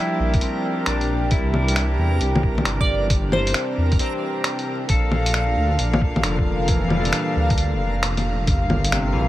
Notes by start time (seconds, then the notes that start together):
Already playing: F3 G3 A#3 D4 E4 G4 A#4 C5
0.19 A#1
0.34 kick, closed hi-hat
0.41 C4, closed hi-hat
0.86 A#1 D4, finger snap, closed hi-hat
1.01 closed hi-hat
1.31 C2 C3 E3 E4, kick, closed hi-hat
1.54 low bongo
1.68 closed hi-hat
1.76 finger snap, closed hi-hat
1.98 E2
2.21 C2, closed hi-hat
2.35 low bongo
2.43 kick
2.58 low bongo
2.65 G1, finger snap, closed hi-hat
2.80 D5, kick
3.10 kick, closed hi-hat
3.32 C5, low bongo
3.47 closed hi-hat
3.54 finger snap, closed hi-hat
3.78 E2
3.92 kick, closed hi-hat
3.99 C4, closed hi-hat
4.44 finger snap, closed hi-hat
4.59 closed hi-hat
4.89 A#1 A#2 D3 D4 A4 F5, kick, closed hi-hat
5.11 low bongo
5.26 closed hi-hat
5.34 finger snap, closed hi-hat
5.57 D2
5.79 A#1, closed hi-hat
5.93 low bongo
6.01 kick
6.16 low bongo
6.23 F1 D3 F3, finger snap, closed hi-hat
6.39 kick
6.68 E3, kick, closed hi-hat
6.88 G3, low bongo
7.01 A4
7.05 closed hi-hat
7.13 finger snap, closed hi-hat
7.36 D2
7.50 kick, closed hi-hat
7.58 closed hi-hat
7.73 F1
8.03 F1, finger snap, closed hi-hat
8.17 closed hi-hat, low bongo
8.47 G1 D3 G3 A#3 F5, kick, closed hi-hat, sub drop
8.70 low bongo
8.85 closed hi-hat
8.92 C3, finger snap, closed hi-hat
9.13 A#1 E3